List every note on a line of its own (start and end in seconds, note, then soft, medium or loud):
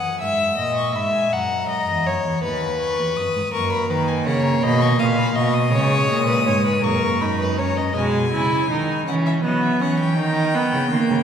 0.00 0.23 F#2 medium
0.00 0.20 F#5 medium
0.00 0.17 D#6 medium
0.20 0.58 G#2 medium
0.20 0.57 E5 loud
0.20 0.75 E6 medium
0.58 0.95 A#2 medium
0.58 0.94 D#5 medium
0.77 0.97 C#6 medium
0.95 1.32 G#2 medium
0.95 1.34 E5 medium
0.95 1.13 B5 medium
1.14 1.34 G#5 medium
1.32 1.87 F#2 medium
1.32 1.68 F#5 medium
1.32 2.42 A#5 medium
1.69 2.08 D#5 medium
1.88 2.08 E2 medium
2.06 2.25 F#2 medium
2.06 2.43 C#5 medium
2.25 2.43 E2 medium
2.43 3.00 D#2 medium
2.43 3.51 B4 loud
2.43 2.79 B5 medium
2.80 3.18 C#6 medium
2.98 3.17 E2 medium
3.16 3.24 F#2 medium
3.16 3.53 D#6 medium
3.35 3.43 G#2 medium
3.53 3.89 F#2 medium
3.53 5.69 A#3 medium
3.53 3.92 A#4 medium
3.53 3.71 C#6 medium
3.72 3.90 B5 medium
3.90 4.28 D#3 loud
3.90 4.26 B4 medium
3.90 4.09 A#5 medium
4.08 4.26 G#5 medium
4.26 4.63 C#3 loud
4.26 4.64 C#5 medium
4.26 4.44 F#5 medium
4.44 4.62 A#5 medium
4.62 4.99 B2 loud
4.62 5.01 D#5 medium
4.62 4.83 B5 medium
4.81 4.98 C#6 medium
4.99 5.35 A#2 loud
4.99 5.37 F5 medium
4.99 5.06 D#6 medium
5.18 5.35 B5 medium
5.35 5.72 B2 loud
5.35 5.72 D#5 medium
5.35 5.56 C#6 medium
5.54 6.86 D#6 loud
5.73 6.09 C#3 loud
5.73 6.82 G#3 medium
5.73 6.27 C#5 loud
6.10 6.49 A#2 loud
6.28 6.46 B4 medium
6.47 6.86 G#2 loud
6.47 6.64 C#5 medium
6.65 6.83 B4 medium
6.83 7.95 F#2 medium
6.83 7.23 A#3 medium
6.83 7.38 A#4 medium
6.83 7.23 C#6 medium
7.21 7.59 D#4 medium
7.21 7.58 B5 medium
7.40 7.60 B4 medium
7.58 7.95 C#4 medium
7.58 7.78 C#5 medium
7.58 7.95 A#5 medium
7.77 7.96 D#5 medium
7.95 8.34 B2 medium
7.95 8.30 G#3 loud
7.95 9.03 G#5 medium
8.33 8.70 C#3 medium
8.33 8.69 E4 loud
8.70 9.07 D#3 medium
8.70 9.06 D#4 medium
9.07 9.43 E3 medium
9.07 9.43 C#4 loud
9.07 9.15 F#5 medium
9.26 9.33 E5 medium
9.44 9.83 F#3 medium
9.44 9.82 B3 loud
9.44 9.64 D#5 medium
9.63 9.81 E5 medium
9.81 10.20 E3 medium
9.81 10.17 C#4 loud
9.81 9.99 F#5 medium
10.00 11.23 G5 medium
10.17 10.75 D#3 loud
10.17 10.56 D#4 loud
10.55 10.90 B3 loud
10.73 10.91 C#3 medium
10.91 10.99 D#3 medium
10.91 11.23 A#3 loud
11.10 11.17 C#3 medium